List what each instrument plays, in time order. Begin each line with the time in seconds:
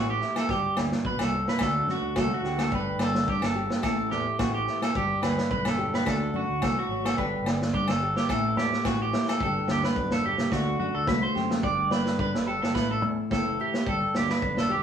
Already playing: fingered electric bass A1, nylon-string guitar E3 A3 C4 E4
0.10 clean electric guitar G4
0.21 nylon-string guitar E4, snare
0.36 clean electric guitar A4, snare, low agogo
0.48 fingered electric bass G1, nylon-string guitar G2 G4, clean electric guitar G4, kick, snare
0.77 fingered electric bass D2, nylon-string guitar B3, muted clean electric guitar stroke, snare, low agogo
0.92 snare
1.04 fingered electric bass B1, nylon-string guitar B2, clean electric guitar B4, kick
1.19 fingered electric bass C2, clean electric guitar A4, snare, low agogo
1.32 nylon-string guitar C3
1.48 clean electric guitar B4, snare
1.59 fingered electric bass D2, nylon-string guitar D3 A3 D4 F#4, clean electric guitar A4, kick, snare, low agogo
1.86 fingered electric bass F#2, nylon-string guitar B3, snare
1.91 clean electric guitar F#4
2.01 fingered electric bass D2
2.16 fingered electric bass C2, nylon-string guitar A3 F#4, clean electric guitar A4, kick, snare, low agogo
2.34 clean electric guitar F#4
2.42 fingered electric bass D2, nylon-string guitar G4, snare
2.58 clean electric guitar A4, snare, low agogo
2.71 fingered electric bass G1, nylon-string guitar G2 G4, clean electric guitar B4, kick
2.98 fingered electric bass G1, nylon-string guitar B3, snare, low agogo
3.03 clean electric guitar A4
3.15 snare
3.27 fingered electric bass G2, nylon-string guitar D3 D4, clean electric guitar G4, kick
3.41 fingered electric bass G1, clean electric guitar A4, snare, low agogo
3.55 nylon-string guitar G4
3.70 snare
3.83 fingered electric bass A1, nylon-string guitar A2 E4, clean electric guitar A4, kick, snare, low agogo
4.11 fingered electric bass E2, nylon-string guitar A3, clean electric guitar G4, snare
4.39 fingered electric bass A1, nylon-string guitar E3 C4, clean electric guitar F#4, kick, snare, low agogo
4.54 clean electric guitar G4
4.67 nylon-string guitar E4, snare
4.82 clean electric guitar A4, snare, low agogo
4.95 fingered electric bass G1, nylon-string guitar G2 G4, clean electric guitar G4, kick
5.22 fingered electric bass D2, nylon-string guitar B3, clean electric guitar B4, snare, low agogo
5.38 snare
5.50 fingered electric bass B1, nylon-string guitar D3 D4, clean electric guitar B4, kick
5.65 fingered electric bass E1, clean electric guitar A4, snare, low agogo
5.78 nylon-string guitar G4
5.94 clean electric guitar B4, snare
6.05 fingered electric bass D2, nylon-string guitar D3 A3 D4 F#4, clean electric guitar A4, kick, snare, low agogo
6.33 fingered electric bass F#2, nylon-string guitar D4, clean electric guitar F#4
6.49 fingered electric bass D2
6.62 fingered electric bass C2, nylon-string guitar E3, clean electric guitar A4, kick, snare, low agogo
6.79 clean electric guitar F#4
6.89 fingered electric bass G#1, nylon-string guitar F#3
7.05 clean electric guitar A4, snare, low agogo
7.17 fingered electric bass G1, nylon-string guitar G2 D3 B3 D4 G4, clean electric guitar B4, kick
7.44 fingered electric bass G1, nylon-string guitar B3, snare, low agogo
7.62 snare
7.73 fingered electric bass G2, nylon-string guitar D3 D4, clean electric guitar G4, kick
7.88 fingered electric bass G1, clean electric guitar A4, snare, low agogo
8.02 nylon-string guitar G4
8.16 clean electric guitar G4, snare
8.29 fingered electric bass A1, nylon-string guitar A2 E3 A3 C4 E4, clean electric guitar A4, kick, snare, low agogo
8.57 fingered electric bass E2, nylon-string guitar A3, clean electric guitar G4, snare
8.72 snare
8.84 fingered electric bass A1, nylon-string guitar E3 C4, clean electric guitar F#4, kick, snare, low agogo
9.02 clean electric guitar G4
9.13 nylon-string guitar E4, snare
9.28 clean electric guitar A4, snare, low agogo
9.40 fingered electric bass G1, nylon-string guitar G2 D3 B3, clean electric guitar A4, kick
9.45 nylon-string guitar D4 G4
9.68 fingered electric bass D2, nylon-string guitar B3, clean electric guitar G4, snare
9.83 clean electric guitar B4, snare
9.96 fingered electric bass B1, nylon-string guitar B2, kick
10.10 fingered electric bass E1, clean electric guitar A4, snare
10.26 nylon-string guitar C3, clean electric guitar G4
10.38 snare
10.51 fingered electric bass D2, nylon-string guitar D3 A3 D4, clean electric guitar F#4, muted nylon-string guitar stroke, kick, snare
10.79 fingered electric bass F#2, nylon-string guitar D4, clean electric guitar F#4
10.95 fingered electric bass D2, clean electric guitar A4
11.07 fingered electric bass C2, nylon-string guitar A3 F#4, clean electric guitar B4, kick, snare
11.23 clean electric guitar C5
11.35 fingered electric bass F#2, nylon-string guitar G4, snare
11.50 snare
11.62 fingered electric bass G1, nylon-string guitar G2 G4, clean electric guitar D5, kick
11.91 fingered electric bass G1, nylon-string guitar B3, clean electric guitar B4, snare
12.05 snare
12.19 fingered electric bass G2, nylon-string guitar D3 D4, clean electric guitar B4, kick
12.34 fingered electric bass G1, snare
12.47 nylon-string guitar G4, clean electric guitar A4
12.62 clean electric guitar A4, snare
12.74 fingered electric bass A1, nylon-string guitar A2 E4, clean electric guitar B4, kick, snare
12.91 clean electric guitar A4
13.02 fingered electric bass E2, nylon-string guitar A3
13.30 fingered electric bass F#1, nylon-string guitar E3 C4, clean electric guitar A4, kick, snare
13.60 nylon-string guitar E4, clean electric guitar G4
13.74 snare
13.86 fingered electric bass G1, nylon-string guitar G2 G4, clean electric guitar A4, kick
14.14 fingered electric bass D2, nylon-string guitar B3, clean electric guitar G4, snare
14.29 clean electric guitar B4, snare
14.42 fingered electric bass B1, nylon-string guitar D3 D4, kick
14.57 fingered electric bass E1, clean electric guitar A4, snare
14.70 nylon-string guitar G4, clean electric guitar G4